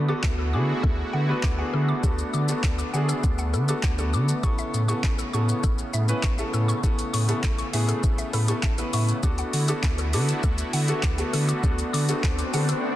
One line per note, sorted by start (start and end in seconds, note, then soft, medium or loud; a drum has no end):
0.00 0.13 D3 medium
0.00 4.40 D3 medium
0.00 6.80 A3 medium
0.00 9.20 B3 medium
0.00 2.01 E4 medium
0.00 4.40 F#4 medium
0.08 0.44 B3 medium
0.08 0.44 D4 medium
0.08 0.44 F#4 medium
0.08 0.44 A4 medium
0.08 0.17 D6 medium
0.24 0.55 D2 loud
0.24 kick loud
0.24 snare medium
0.24 clap loud
0.38 0.47 A4 medium
0.53 0.73 D3 medium
0.53 1.13 B3 medium
0.53 1.13 D4 medium
0.53 1.13 F#4 medium
0.53 1.13 G#4 medium
0.53 0.62 D6 medium
0.83 1.03 D2 loud
0.83 0.91 A4 medium
0.83 kick loud
1.13 1.33 D3 medium
1.13 1.21 F#5 medium
1.29 1.52 B3 medium
1.29 1.52 D4 medium
1.29 1.52 F#4 medium
1.29 1.52 B4 medium
1.43 1.63 D2 loud
1.43 1.52 D6 medium
1.43 kick loud
1.43 snare medium
1.43 clap loud
1.58 1.94 B3 medium
1.58 1.94 D4 medium
1.58 1.94 F#4 medium
1.58 1.94 G#4 medium
1.58 1.67 F#5 medium
1.73 1.93 D3 loud
1.73 1.82 A4 medium
1.89 1.97 D6 medium
2.03 2.23 D2 loud
2.03 2.39 B3 medium
2.03 2.39 D4 medium
2.03 4.41 D4 medium
2.03 2.39 F#4 medium
2.03 2.39 A4 loud
2.03 kick loud
2.03 shaker medium
2.18 shaker medium
2.34 2.53 D3 medium
2.34 2.42 D6 medium
2.34 shaker medium
2.48 2.84 B3 medium
2.48 2.84 D4 medium
2.48 2.84 F#4 medium
2.48 2.84 A4 medium
2.48 shaker medium
2.64 2.83 D2 loud
2.64 2.72 A4 medium
2.64 kick loud
2.64 snare medium
2.64 clap loud
2.64 shaker medium
2.78 2.87 D6 medium
2.78 shaker medium
2.93 3.13 D3 loud
2.93 3.53 B3 medium
2.93 3.53 D4 medium
2.93 3.53 F#4 medium
2.93 3.53 G#4 medium
2.93 3.02 F#5 medium
2.93 shaker medium
3.09 3.17 A4 medium
3.09 shaker medium
3.24 3.55 D2 loud
3.24 kick loud
3.24 shaker medium
3.38 3.47 F#5 medium
3.38 shaker medium
3.54 3.73 D3 medium
3.54 3.62 A4 medium
3.54 shaker medium
3.68 3.92 B3 medium
3.68 3.92 D4 medium
3.68 3.92 F#4 medium
3.68 3.92 A4 medium
3.68 3.77 D6 medium
3.68 shaker medium
3.83 4.15 D2 loud
3.83 3.92 F#5 medium
3.83 kick loud
3.83 snare medium
3.83 clap loud
3.83 shaker medium
3.98 4.34 B3 medium
3.98 4.34 D4 medium
3.98 4.34 F#4 medium
3.98 4.07 A4 medium
3.98 4.34 A4 medium
3.98 shaker medium
4.13 4.33 D3 loud
4.13 4.22 D6 medium
4.13 shaker medium
4.29 shaker medium
4.43 4.63 A1 loud
4.43 9.20 C#3 medium
4.43 4.79 B3 medium
4.43 4.79 C#4 medium
4.43 4.79 E4 medium
4.43 4.79 A4 loud
4.43 4.52 C#6 loud
4.43 kick loud
4.43 shaker medium
4.58 4.67 E5 medium
4.58 shaker medium
4.74 4.93 A2 medium
4.74 shaker medium
4.88 5.24 B3 medium
4.88 5.24 C#4 medium
4.88 5.24 E4 medium
4.88 5.24 A4 medium
4.88 4.96 C#6 medium
4.88 shaker medium
5.04 5.23 A1 loud
5.04 kick loud
5.04 snare medium
5.04 clap loud
5.04 shaker medium
5.18 5.27 A4 medium
5.18 shaker medium
5.33 5.53 A2 loud
5.33 5.93 B3 medium
5.33 5.93 C#4 medium
5.33 5.93 E4 medium
5.33 5.93 A4 medium
5.33 5.42 C#6 medium
5.33 shaker medium
5.49 shaker medium
5.63 5.83 A1 loud
5.63 5.72 A4 medium
5.63 kick loud
5.63 shaker medium
5.78 shaker medium
5.93 6.13 A2 medium
5.93 6.02 E5 medium
5.93 shaker medium
6.08 6.32 B3 medium
6.08 6.32 C#4 medium
6.08 6.32 E4 medium
6.08 6.32 B4 medium
6.08 shaker medium
6.23 6.43 A1 loud
6.23 6.31 C#6 medium
6.23 kick loud
6.23 snare medium
6.23 clap loud
6.23 shaker medium
6.38 6.74 B3 medium
6.38 6.74 C#4 medium
6.38 6.74 E4 medium
6.38 6.74 A4 medium
6.38 6.47 E5 medium
6.38 shaker medium
6.54 6.73 A2 loud
6.54 6.62 A4 medium
6.54 shaker medium
6.68 6.76 C#6 medium
6.68 shaker medium
6.83 7.03 A1 loud
6.83 9.21 A3 medium
6.83 7.19 B3 medium
6.83 7.19 C#4 medium
6.83 7.19 E4 medium
6.83 7.19 A4 loud
6.83 kick loud
6.83 shaker medium
6.99 closed hi-hat medium
6.99 shaker medium
7.13 7.33 A2 medium
7.13 7.22 C#6 medium
7.13 open hi-hat medium
7.13 shaker medium
7.28 7.64 B3 medium
7.28 7.64 C#4 medium
7.28 7.64 E4 medium
7.28 7.64 A4 medium
7.28 closed hi-hat medium
7.28 shaker medium
7.43 7.63 A1 loud
7.43 7.52 A4 medium
7.43 kick loud
7.43 snare medium
7.43 clap loud
7.43 shaker medium
7.58 7.67 C#6 medium
7.58 closed hi-hat medium
7.58 shaker medium
7.73 7.93 A2 loud
7.73 8.33 B3 medium
7.73 8.33 C#4 medium
7.73 8.33 E4 medium
7.73 8.33 G#4 medium
7.73 7.82 E5 medium
7.73 open hi-hat medium
7.73 shaker medium
7.88 7.97 A4 medium
7.88 closed hi-hat medium
7.88 shaker medium
8.03 8.23 A1 loud
8.03 kick loud
8.03 shaker medium
8.18 8.27 E5 medium
8.18 closed hi-hat soft
8.18 shaker soft
8.33 8.53 A2 loud
8.33 8.42 A4 medium
8.33 8.61 B5 medium
8.33 open hi-hat medium
8.33 shaker medium
8.48 8.72 B3 medium
8.48 8.72 C#4 medium
8.48 8.72 E4 medium
8.48 8.72 A4 medium
8.48 8.56 C#6 medium
8.48 closed hi-hat medium
8.48 shaker medium
8.63 8.83 A1 loud
8.63 8.72 E5 medium
8.63 8.92 A5 medium
8.63 kick loud
8.63 snare medium
8.63 clap loud
8.63 shaker medium
8.78 9.14 B3 medium
8.78 9.14 C#4 medium
8.78 9.14 E4 medium
8.78 8.86 A4 medium
8.78 9.14 B4 medium
8.78 closed hi-hat medium
8.78 shaker medium
8.93 9.13 A2 loud
8.93 9.21 E5 medium
8.93 9.02 C#6 medium
8.93 open hi-hat medium
8.93 shaker medium
9.09 closed hi-hat medium
9.09 shaker medium
9.23 9.43 D2 loud
9.23 12.96 D3 medium
9.23 12.96 A3 medium
9.23 9.59 B3 medium
9.23 12.96 B3 medium
9.23 9.59 D4 medium
9.23 11.61 E4 medium
9.23 12.96 F#4 medium
9.23 9.59 F#4 medium
9.23 9.59 A4 loud
9.23 9.32 D6 loud
9.23 kick loud
9.23 shaker medium
9.38 9.47 F#5 medium
9.38 closed hi-hat medium
9.38 shaker medium
9.53 9.73 D3 medium
9.53 open hi-hat medium
9.53 shaker medium
9.68 10.04 B3 medium
9.68 10.04 D4 medium
9.68 10.04 F#4 medium
9.68 10.04 A4 medium
9.68 9.77 D6 medium
9.68 closed hi-hat medium
9.68 shaker medium
9.83 10.15 D2 loud
9.83 kick loud
9.83 snare medium
9.83 clap loud
9.83 shaker medium
9.98 10.07 A4 medium
9.98 closed hi-hat medium
9.98 shaker medium
10.13 10.33 D3 loud
10.13 10.73 B3 medium
10.13 10.73 D4 medium
10.13 10.73 F#4 medium
10.13 10.73 A4 medium
10.13 10.22 D6 medium
10.13 open hi-hat medium
10.13 shaker medium
10.29 closed hi-hat medium
10.29 shaker medium
10.43 10.63 D2 loud
10.43 10.52 A4 medium
10.43 kick loud
10.43 shaker medium
10.58 closed hi-hat soft
10.58 shaker medium
10.73 10.93 D3 loud
10.73 10.82 F#5 medium
10.73 open hi-hat medium
10.73 shaker medium
10.88 11.12 B3 medium
10.88 11.12 D4 medium
10.88 11.12 F#4 medium
10.88 11.12 A4 medium
10.88 closed hi-hat medium
10.88 shaker medium
11.03 11.23 D2 loud
11.03 11.12 D6 medium
11.03 kick loud
11.03 snare medium
11.03 clap loud
11.03 shaker medium
11.18 11.54 B3 medium
11.18 11.54 D4 medium
11.18 11.54 F#4 medium
11.18 11.54 A4 loud
11.18 11.26 F#5 medium
11.18 closed hi-hat medium
11.18 shaker medium
11.33 11.53 D3 loud
11.33 11.41 A4 medium
11.33 open hi-hat medium
11.33 shaker medium
11.48 11.57 D6 medium
11.48 closed hi-hat medium
11.48 shaker medium
11.63 11.83 D2 loud
11.63 11.99 B3 medium
11.63 12.96 D4 medium
11.63 11.99 D4 medium
11.63 11.99 F#4 medium
11.63 11.99 A4 loud
11.63 kick loud
11.63 swell medium
11.63 shaker medium
11.79 closed hi-hat medium
11.79 shaker medium
11.93 12.13 D3 medium
11.93 12.02 D6 medium
11.93 open hi-hat medium
11.93 shaker medium
12.09 12.44 B3 medium
12.09 12.44 D4 medium
12.09 12.44 F#4 medium
12.09 12.44 A4 medium
12.09 closed hi-hat medium
12.09 shaker medium
12.23 12.43 D2 loud
12.23 12.32 A4 medium
12.23 kick loud
12.23 snare loud
12.23 clap loud
12.23 shaker medium
12.38 12.47 D6 medium
12.38 closed hi-hat medium
12.38 shaker medium
12.53 12.73 D3 loud
12.53 12.96 B3 medium
12.53 12.96 D4 medium
12.53 12.96 F#4 medium
12.53 12.96 A4 loud
12.53 12.62 F#5 medium
12.53 open hi-hat medium
12.53 shaker medium
12.69 12.77 A4 medium
12.69 closed hi-hat medium
12.69 shaker medium